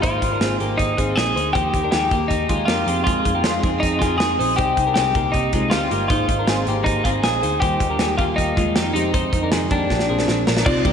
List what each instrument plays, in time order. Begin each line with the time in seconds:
0.02 picked electric bass G#1, steel-string acoustic guitar G#3 A#3 D#4 G#4 C5, clean electric guitar D#4 F4 C5, kick, closed hi-hat
0.21 picked electric bass G#1, steel-string acoustic guitar D#4 G#4 C5, kick, closed hi-hat
0.32 clean electric guitar D4 A#4
0.41 picked electric bass G#1, steel-string acoustic guitar A#3 D#4 G#4 C5, clean electric guitar C4 G#4, snare, closed hi-hat
0.59 picked electric bass G#1, clean electric guitar A#3 G4, steel-string acoustic guitar D#4 G#4 C5, closed hi-hat
0.78 picked electric bass G#1, clean electric guitar D#4, kick, closed hi-hat
0.97 picked electric bass G#1, clean electric guitar C4 F4 G#4, steel-string acoustic guitar D#4 G#4 C5, kick, closed hi-hat
1.16 picked electric bass A#1, steel-string acoustic guitar A#3 D#4 G#4 C5, clean electric guitar G#4, snare, closed hi-hat
1.36 picked electric bass D2, clean electric guitar D#4 C5, closed hi-hat
1.53 picked electric bass D#2, steel-string acoustic guitar D#3 F3 A#3 D#4 G4, clean electric guitar D#4 G4 C5, kick, closed hi-hat
1.72 picked electric bass D#2, steel-string acoustic guitar A#3 D#4 G4, kick, closed hi-hat
1.83 clean electric guitar D4 A#4
1.91 picked electric bass D#2, steel-string acoustic guitar F3 A#3 D#4 G4, clean electric guitar D#4 G4 G#4, snare, closed hi-hat
2.11 picked electric bass D#2, clean electric guitar A#3 G4, steel-string acoustic guitar A#3 D#4 G4, kick, closed hi-hat
2.28 picked electric bass D#2, clean electric guitar D#4, kick, closed hi-hat
2.49 picked electric bass D#2, clean electric guitar G#3 F4, steel-string acoustic guitar A#3 D#4 G4, kick, closed hi-hat
2.65 picked electric bass F2, steel-string acoustic guitar F3, clean electric guitar F4 G4, snare, closed hi-hat
2.69 clean electric guitar A#3, steel-string acoustic guitar A#3 D#4 G4
2.87 picked electric bass F2, steel-string acoustic guitar F3 C4 D#4 G#4, clean electric guitar C4 G4, closed hi-hat
3.04 clean electric guitar G#3 F4, kick, closed hi-hat
3.25 picked electric bass F2, steel-string acoustic guitar C4 D#4 G#4, kick, closed hi-hat
3.35 clean electric guitar A#3 G4
3.44 picked electric bass F2, steel-string acoustic guitar F3 C4 D#4 G#4, clean electric guitar G#3 F4, snare, closed hi-hat
3.62 picked electric bass F2, clean electric guitar C4 G#4, steel-string acoustic guitar C4 D#4 G#4, kick, closed hi-hat
3.80 picked electric bass F2, clean electric guitar D#4, kick, closed hi-hat
3.99 picked electric bass F2, clean electric guitar C4 F4 G#4, steel-string acoustic guitar D#4 G#4, kick, snare, closed hi-hat
4.04 steel-string acoustic guitar C4
4.18 picked electric bass F2, steel-string acoustic guitar F3 C4 D#4, clean electric guitar G#4, snare, closed hi-hat
4.22 steel-string acoustic guitar G#4
4.39 picked electric bass A#1, clean electric guitar D#4 C5, open hi-hat
4.56 picked electric bass C2, steel-string acoustic guitar C3 G3 C4 D#4, clean electric guitar D#4 G4 C5, kick, closed hi-hat
4.60 steel-string acoustic guitar G4
4.77 picked electric bass C2, steel-string acoustic guitar C4 D#4, kick, closed hi-hat
4.87 clean electric guitar D4 A#4
4.94 picked electric bass C2, steel-string acoustic guitar G3 C4, clean electric guitar C4 G4 G#4, snare, closed hi-hat
4.98 steel-string acoustic guitar D#4 G4
5.15 picked electric bass C2, clean electric guitar A#3 G4, steel-string acoustic guitar C4 D#4 G4, kick, closed hi-hat
5.32 picked electric bass C2, clean electric guitar D#4, kick, closed hi-hat
5.53 picked electric bass C2, clean electric guitar G#3 F4, steel-string acoustic guitar C4 D#4 G4, kick, closed hi-hat
5.70 picked electric bass D2, steel-string acoustic guitar G3 C4 D#4, clean electric guitar C4 F4 G4, snare, closed hi-hat
5.75 steel-string acoustic guitar G4
5.91 picked electric bass G1, clean electric guitar A#3 G4, closed hi-hat
6.08 picked electric bass G#1, steel-string acoustic guitar G#3 A#3 D#4 G#4 C5, clean electric guitar D#4 F4 C5, kick, closed hi-hat
6.29 picked electric bass G#1, steel-string acoustic guitar D#4 G#4 C5, kick, closed hi-hat
6.39 clean electric guitar D4 A#4
6.47 picked electric bass G#1, steel-string acoustic guitar A#3 D#4 G#4 C5, clean electric guitar C4 G#4, snare, closed hi-hat
6.67 picked electric bass G#1, clean electric guitar A#3 G4, steel-string acoustic guitar D#4 G#4 C5, closed hi-hat
6.84 picked electric bass G#1, clean electric guitar D#4, kick, closed hi-hat
7.04 picked electric bass G#1, clean electric guitar C4 F4 G#4, steel-string acoustic guitar G#4 C5, kick, closed hi-hat
7.09 steel-string acoustic guitar D#4
7.24 picked electric bass A#1, steel-string acoustic guitar A#3 D#4 G#4 C5, clean electric guitar G#4, snare, closed hi-hat
7.43 picked electric bass D2, clean electric guitar D#4 C5, closed hi-hat
7.60 picked electric bass D#2, steel-string acoustic guitar D#3 G3 A#3 F4, clean electric guitar D#4 G4 C5, kick, closed hi-hat
7.80 picked electric bass D#2, steel-string acoustic guitar G3 A#3 F4, kick, closed hi-hat
7.90 clean electric guitar D4 A#4
7.99 picked electric bass D#2, steel-string acoustic guitar D#3 G3 A#3 F4, clean electric guitar D#4 G#4, snare, closed hi-hat
8.18 picked electric bass D#2, clean electric guitar A#3 F4 G4, steel-string acoustic guitar A#3 F4, kick, closed hi-hat
8.22 steel-string acoustic guitar G3
8.36 picked electric bass D#2, clean electric guitar D#4, kick, closed hi-hat
8.57 picked electric bass D#2, steel-string acoustic guitar G3 A#3 F4, clean electric guitar G#3 F4, kick, closed hi-hat
8.75 picked electric bass F2, steel-string acoustic guitar D#3 G3 A#3 F4, clean electric guitar A#3 G4, snare, closed hi-hat
8.94 picked electric bass F2, steel-string acoustic guitar F2 C3 D#3 G#3 C4, clean electric guitar C4 D#4 G4, closed hi-hat
9.14 clean electric guitar D#4 C5, kick, closed hi-hat
9.33 picked electric bass F2, steel-string acoustic guitar D#3 G#3 C4, kick, closed hi-hat
9.43 clean electric guitar D4 A#4
9.51 picked electric bass F2, steel-string acoustic guitar C3 D#3 G#3 C4, clean electric guitar C4 G#4, snare, closed hi-hat
9.69 picked electric bass F2, steel-string acoustic guitar D#3 G#3 C4, clean electric guitar A#3 D4 G4, kick, closed hi-hat
9.89 picked electric bass A#1, steel-string acoustic guitar A#2 F3 A#3 D4, kick, snare
9.99 snare
10.08 picked electric bass A#1, steel-string acoustic guitar F3 A#3 D4, clean electric guitar C4 G#4
10.19 snare
10.27 picked electric bass A#1, steel-string acoustic guitar A#2 F3 A#3 D4, snare
10.47 picked electric bass A#1, clean electric guitar D4 A#4, snare
10.57 snare
10.65 picked electric bass C2, steel-string acoustic guitar C3 G3 C4 D#4 G4 D5, clean electric guitar C4 F4 D5, kick, crash
10.85 picked electric bass C2, clean electric guitar A#3 G4, kick, ride